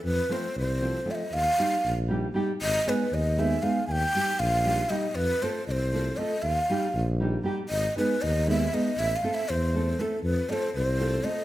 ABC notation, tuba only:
X:1
M:5/8
L:1/8
Q:1/4=118
K:none
V:1 name="Tuba" clef=bass
F,, z C,,3 | ^D,, z ^A,,,3 | ^G,,, z ^D,,3 | ^D,, z ^A,,,3 |
F,, z C,,3 | ^D,, z ^A,,,3 | ^G,,, z ^D,,3 | A,,, z E,,3 |
F,, z C,,3 |]